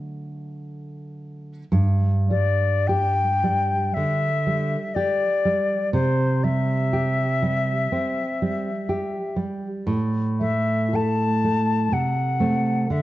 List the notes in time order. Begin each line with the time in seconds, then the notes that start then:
Already playing: D3 F#3 A3 A4 D5
1.72 G2
2.30 G3 D5
2.87 G4 G5
3.44 G3
3.94 D3 E5
4.46 G3
4.95 G4 D5
5.45 G3
5.93 C3 C5
6.44 G3 E5
6.93 G4
7.42 G3
7.92 C4
8.42 G3
8.89 G4
9.36 G3
9.87 A2
10.40 A3 E5
10.93 A4 A5
11.44 A3
11.92 C3 F#5
12.40 A3 C4
12.90 D3 E5